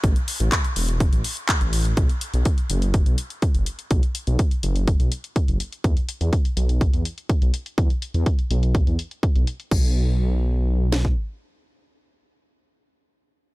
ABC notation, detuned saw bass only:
X:1
M:4/4
L:1/16
Q:1/4=124
K:E
V:1 name="Detuned saw bass" clef=bass
A,,, z2 A,,, z2 E,,,3 A,,, z3 A,,,3 | B,,, z2 B,,, z2 F,,,3 B,,, z3 F,,, z2 | B,,, z2 B,,, z2 F,,,3 B,,, z3 F,,, z2 | E,, z2 E,, z2 B,,,3 E,, z3 B,,, z2 |
E,, z2 E,, z2 B,,,3 E,, z3 B,,, z2 | B,,,12 z4 | z16 |]